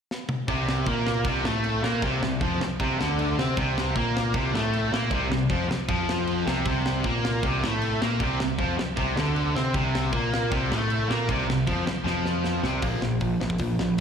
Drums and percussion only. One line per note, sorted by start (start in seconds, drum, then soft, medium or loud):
0.11 snare medium
0.29 mid tom medium
0.48 kick loud
0.48 crash medium
0.69 snare loud
0.87 kick loud
0.87 crash medium
1.07 snare loud
1.24 kick loud
1.24 crash medium
1.45 snare loud
1.64 crash medium
1.84 snare loud
2.02 kick loud
2.02 crash medium
2.23 snare loud
2.41 kick medium
2.41 crash medium
2.61 snare loud
2.80 kick loud
2.80 crash medium
3.01 snare loud
3.19 crash medium
3.39 snare loud
3.57 kick loud
3.57 crash medium
3.78 snare loud
3.96 kick medium
3.96 crash medium
4.17 snare loud
4.34 kick loud
4.34 crash medium
4.55 snare loud
4.73 crash medium
4.94 snare loud
5.11 kick loud
5.11 crash medium
5.32 snare loud
5.50 kick loud
5.50 crash medium
5.71 snare loud
5.89 kick loud
5.89 crash medium
6.09 snare loud
6.27 crash medium
6.48 snare loud
6.66 kick loud
6.66 crash medium
6.86 snare loud
7.04 kick loud
7.04 crash medium
7.25 snare loud
7.43 kick loud
7.43 crash medium
7.64 snare loud
7.82 crash medium
8.02 snare loud
8.20 kick loud
8.20 crash medium
8.40 snare loud
8.59 kick medium
8.59 crash medium
8.79 snare loud
8.97 kick loud
8.97 crash medium
9.17 snare loud
9.36 crash medium
9.56 snare loud
9.74 kick loud
9.74 crash medium
9.95 snare loud
10.13 kick loud
10.13 crash soft
10.34 snare loud
10.52 kick loud
10.52 crash medium
10.72 snare loud
10.90 crash medium
11.11 snare loud
11.29 kick loud
11.29 crash medium
11.50 snare loud
11.67 kick medium
11.67 crash medium
11.87 snare loud
12.07 snare medium
12.26 snare medium
12.44 snare medium
12.64 snare medium
12.82 kick loud
12.82 open hi-hat medium
13.02 snare loud
13.21 kick medium
13.21 open hi-hat soft
13.41 snare loud
13.50 kick medium
13.58 kick medium
13.58 open hi-hat medium
13.79 snare loud